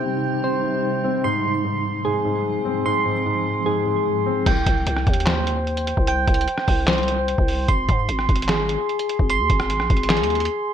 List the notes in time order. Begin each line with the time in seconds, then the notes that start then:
Already playing: C3 G3 C4 D#4 C5 G5
0.03 C3
0.44 C3 C5
0.64 C3
1.04 C4
1.24 G#2 F3 C4 C6
1.44 G#2
1.65 G#2
2.05 G#2 G#4
2.25 G#2
2.65 C4
2.85 G#2 C6
3.05 G#2
3.26 G#2
3.66 G#2 G#4
3.86 G#2
4.26 C4
4.46 C2 G5, kick, closed hi-hat, crash
4.66 C2, kick, closed hi-hat
4.87 C2, closed hi-hat
4.97 cross-stick
5.07 D#2, kick, closed hi-hat
5.13 closed hi-hat
5.20 closed hi-hat
5.26 C5, snare, clap, closed hi-hat
5.47 closed hi-hat
5.67 closed hi-hat
5.77 closed hi-hat
5.87 closed hi-hat
5.97 C2, kick
6.07 G5, closed hi-hat
6.27 C2, kick, closed hi-hat
6.34 closed hi-hat
6.41 closed hi-hat
6.48 closed hi-hat
6.58 cross-stick
6.68 C2, kick, open hi-hat
6.87 C5, snare, clap, closed hi-hat
6.93 closed hi-hat
6.98 closed hi-hat
7.03 closed hi-hat
7.08 closed hi-hat
7.28 closed hi-hat
7.38 C2, kick
7.48 open hi-hat
7.68 G#1 C6, kick, closed hi-hat
7.89 G#2, kick, closed hi-hat
8.09 G#1, closed hi-hat
8.19 cross-stick
8.29 G#1, kick, closed hi-hat
8.36 closed hi-hat
8.42 closed hi-hat
8.48 G#4, snare, clap, closed hi-hat
8.69 closed hi-hat
8.89 closed hi-hat
8.99 closed hi-hat
9.09 closed hi-hat
9.19 G#1, kick
9.30 C6, closed hi-hat
9.40 D#2
9.50 G#1, kick, closed hi-hat
9.60 cross-stick
9.70 closed hi-hat
9.80 A#1, cross-stick
9.90 G#1, kick, closed hi-hat
9.97 closed hi-hat
10.03 closed hi-hat
10.10 G#4, snare, clap, closed hi-hat
10.17 D#2, closed hi-hat
10.23 closed hi-hat
10.30 closed hi-hat
10.35 closed hi-hat
10.40 closed hi-hat
10.45 closed hi-hat